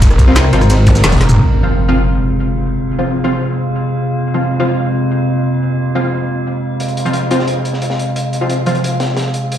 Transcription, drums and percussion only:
0.02 kick loud
0.02 closed hi-hat loud
0.02 closed hi-hat medium
0.02 ride bell medium
0.02 shaker medium
0.10 cross-stick medium
0.10 closed hi-hat soft
0.19 kick loud
0.19 closed hi-hat medium
0.19 shaker soft
0.36 snare loud
0.36 closed hi-hat loud
0.36 closed hi-hat medium
0.36 ride bell medium
0.36 shaker medium
0.44 cross-stick medium
0.53 closed hi-hat medium
0.61 cross-stick medium
0.61 closed hi-hat soft
0.61 shaker soft
0.70 snare loud
0.70 closed hi-hat loud
0.70 closed hi-hat medium
0.70 ride bell medium
0.70 shaker medium
0.87 kick loud
0.87 closed hi-hat medium
0.87 high tom medium
0.87 shaker soft
0.95 snare loud
0.95 closed hi-hat soft
0.95 closed hi-hat medium
0.95 shaker medium
1.03 snare loud
1.03 snare medium
1.03 closed hi-hat medium
1.03 closed hi-hat loud
1.03 mid tom medium
1.03 ride bell medium
1.03 shaker medium
1.08 snare medium
1.08 closed hi-hat medium
1.12 kick medium
1.12 snare medium
1.12 closed hi-hat medium
1.12 closed hi-hat soft
1.12 mid tom medium
1.12 shaker soft
1.15 snare medium
1.15 closed hi-hat medium
1.21 snare soft
1.21 closed hi-hat medium
1.29 mid tom medium
1.29 shaker medium
6.80 closed hi-hat medium
6.88 closed hi-hat soft
6.97 closed hi-hat medium
7.06 closed hi-hat soft
7.13 closed hi-hat medium
7.31 closed hi-hat medium
7.39 snare soft
7.48 closed hi-hat medium
7.65 closed hi-hat medium
7.73 snare soft
7.82 closed hi-hat medium
7.90 snare soft
7.99 closed hi-hat medium
8.16 closed hi-hat medium
8.33 closed hi-hat medium
8.50 closed hi-hat medium
8.66 closed hi-hat medium
8.75 closed hi-hat soft
8.84 closed hi-hat medium
9.00 snare loud
9.00 closed hi-hat medium
9.17 snare loud
9.17 closed hi-hat medium
9.34 closed hi-hat medium
9.52 closed hi-hat medium

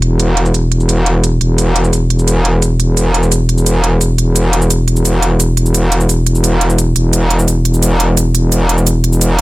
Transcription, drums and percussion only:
0.02 closed hi-hat medium
0.20 closed hi-hat medium
0.20 cabasa medium
0.37 closed hi-hat medium
0.46 cabasa soft
0.54 closed hi-hat medium
0.54 cabasa medium
0.72 closed hi-hat medium
0.80 cabasa soft
0.89 closed hi-hat medium
0.89 cabasa medium
1.06 closed hi-hat medium
1.24 closed hi-hat medium
1.24 cabasa soft
1.41 closed hi-hat medium
1.58 closed hi-hat medium
1.58 cabasa medium
1.76 closed hi-hat medium
1.84 cabasa soft
1.93 closed hi-hat medium
1.93 cabasa medium
2.10 closed hi-hat medium
2.19 cabasa soft
2.28 closed hi-hat medium
2.28 cabasa medium
2.45 closed hi-hat medium
2.62 closed hi-hat medium
2.62 cabasa medium
2.80 closed hi-hat medium
2.97 closed hi-hat medium
2.97 cabasa medium
3.14 closed hi-hat medium
3.23 cabasa soft
3.32 closed hi-hat medium
3.32 cabasa medium
3.49 closed hi-hat medium
3.58 cabasa soft
3.66 closed hi-hat medium
3.66 cabasa medium
3.84 closed hi-hat medium
4.01 closed hi-hat medium
4.01 cabasa medium
4.18 closed hi-hat medium
4.36 closed hi-hat medium
4.36 cabasa medium
4.53 closed hi-hat medium
4.62 cabasa soft
4.70 closed hi-hat medium
4.70 cabasa medium
4.88 closed hi-hat medium
4.96 cabasa soft
5.05 closed hi-hat medium
5.05 cabasa medium
5.22 closed hi-hat medium
5.40 closed hi-hat medium
5.40 cabasa medium
5.57 closed hi-hat medium
5.66 cabasa soft
5.75 closed hi-hat medium
5.75 cabasa medium
5.92 closed hi-hat medium
6.00 cabasa soft
6.09 closed hi-hat medium
6.09 cabasa medium
6.26 closed hi-hat medium
6.35 cabasa soft
6.44 closed hi-hat medium
6.44 cabasa medium
6.61 closed hi-hat medium
6.70 cabasa soft
6.78 closed hi-hat medium
6.78 cabasa medium
6.96 closed hi-hat medium
7.13 closed hi-hat medium
7.13 cabasa medium
7.30 closed hi-hat medium
7.39 cabasa soft
7.48 closed hi-hat medium
7.48 cabasa medium
7.65 closed hi-hat medium
7.74 cabasa soft
7.83 closed hi-hat medium
7.83 cabasa medium
8.00 closed hi-hat medium
8.17 closed hi-hat medium
8.17 cabasa medium
8.35 closed hi-hat medium
8.52 closed hi-hat medium
8.52 cabasa medium
8.69 closed hi-hat medium
8.78 cabasa soft
8.87 closed hi-hat medium
8.87 cabasa medium
9.04 closed hi-hat medium
9.13 cabasa soft
9.21 closed hi-hat medium
9.21 cabasa medium

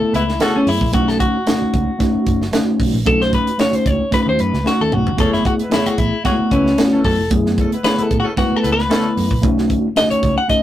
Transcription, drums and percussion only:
0.14 closed hi-hat medium
0.29 snare soft
0.40 snare loud
0.40 closed hi-hat loud
0.67 open hi-hat medium
0.81 kick medium
0.93 kick loud
0.93 closed hi-hat loud
1.08 snare soft
1.20 kick loud
1.20 closed hi-hat medium
1.47 snare loud
1.47 closed hi-hat medium
1.74 kick loud
1.74 closed hi-hat medium
2.00 kick medium
2.00 snare soft
2.00 closed hi-hat medium
2.26 kick loud
2.26 closed hi-hat medium
2.42 snare soft
2.53 snare loud
2.53 closed hi-hat medium
2.80 kick medium
2.80 open hi-hat medium
3.06 kick loud
3.06 closed hi-hat medium
3.21 snare soft
3.33 kick loud
3.33 closed hi-hat medium
3.47 closed hi-hat medium
3.59 snare loud
3.59 closed hi-hat medium
3.73 closed hi-hat medium
3.86 kick loud
3.86 closed hi-hat medium
4.12 kick loud
4.12 snare soft
4.12 closed hi-hat medium
4.39 closed hi-hat medium
4.54 snare soft
4.66 snare medium
4.92 mid tom medium
5.07 floor tom medium
5.18 kick loud
5.18 closed hi-hat medium
5.33 snare soft
5.45 kick loud
5.45 closed hi-hat medium
5.59 closed hi-hat medium
5.71 snare loud
5.71 closed hi-hat medium
5.86 closed hi-hat medium
5.98 kick medium
5.98 closed hi-hat medium
6.25 kick medium
6.25 snare soft
6.25 closed hi-hat medium
6.51 kick medium
6.51 closed hi-hat medium
6.66 snare soft
6.78 snare loud
6.78 closed hi-hat loud
7.05 kick medium
7.05 open hi-hat medium
7.31 kick loud
7.31 closed hi-hat loud
7.46 snare soft
7.58 kick loud
7.58 closed hi-hat medium
7.72 closed hi-hat medium
7.84 snare loud
7.84 closed hi-hat medium
7.98 closed hi-hat medium
8.11 kick medium
8.11 closed hi-hat medium
8.37 kick medium
8.37 snare soft
8.37 closed hi-hat medium
8.64 closed hi-hat medium
8.79 snare soft
8.91 snare loud
8.91 closed hi-hat loud
9.17 open hi-hat medium
9.31 kick medium
9.43 kick loud
9.43 closed hi-hat loud
9.58 snare soft
9.70 kick loud
9.70 closed hi-hat medium
9.96 snare loud
9.96 closed hi-hat medium
10.11 closed hi-hat medium
10.23 kick loud
10.23 closed hi-hat medium
10.49 kick medium
10.49 closed hi-hat medium

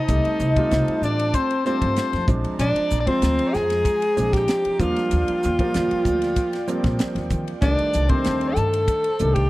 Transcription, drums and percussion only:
0.08 kick medium
0.08 hi-hat pedal medium
0.08 ride medium
0.25 ride medium
0.40 hi-hat pedal medium
0.56 kick medium
0.56 ride soft
0.71 snare medium
0.71 hi-hat pedal medium
0.71 ride medium
0.88 ride medium
1.03 hi-hat pedal medium
1.19 ride medium
1.34 kick medium
1.34 hi-hat pedal medium
1.34 ride medium
1.51 ride medium
1.66 hi-hat pedal medium
1.82 kick medium
1.82 ride medium
1.96 snare loud
1.96 hi-hat pedal medium
1.96 ride medium
2.13 snare soft
2.13 ride medium
2.28 kick medium
2.28 hi-hat pedal medium
2.44 ride medium
2.59 hi-hat pedal medium
2.59 ride medium
2.76 ride medium
2.90 hi-hat pedal medium
3.07 kick medium
3.07 ride medium
3.22 snare medium
3.22 hi-hat pedal medium
3.22 ride medium
3.39 ride medium
3.54 snare soft
3.54 hi-hat pedal medium
3.70 snare soft
3.70 ride medium
3.85 kick medium
3.85 hi-hat pedal medium
3.85 ride medium
4.02 ride medium
4.17 hi-hat pedal medium
4.33 kick medium
4.33 snare soft
4.33 ride medium
4.48 snare medium
4.48 hi-hat pedal medium
4.48 ride medium
4.65 ride medium
4.80 kick medium
4.80 hi-hat pedal medium
4.96 snare soft
4.96 ride medium
5.11 hi-hat pedal medium
5.11 ride medium
5.28 ride medium
5.43 hi-hat pedal medium
5.59 kick medium
5.59 ride medium
5.74 snare medium
5.74 hi-hat pedal medium
5.74 ride medium
5.91 ride medium
6.05 kick medium
6.05 hi-hat pedal medium
6.22 snare soft
6.22 ride medium
6.36 kick medium
6.36 hi-hat pedal medium
6.36 ride medium
6.53 snare soft
6.53 ride medium
6.68 hi-hat pedal medium
6.84 kick medium
6.84 snare soft
6.84 ride medium
6.99 snare loud
6.99 hi-hat pedal medium
6.99 ride medium
7.16 snare soft
7.16 ride medium
7.30 kick medium
7.30 hi-hat pedal medium
7.48 ride soft
7.62 kick loud
7.62 hi-hat pedal medium
7.62 ride medium
7.79 ride medium
7.93 hi-hat pedal medium
8.09 kick medium
8.09 ride medium
8.24 snare medium
8.24 hi-hat pedal medium
8.24 ride medium
8.41 ride medium
8.56 hi-hat pedal medium
8.73 ride medium
8.88 kick medium
8.88 hi-hat pedal medium
8.88 ride medium
9.04 ride medium
9.19 hi-hat pedal medium
9.36 kick medium
9.36 ride medium

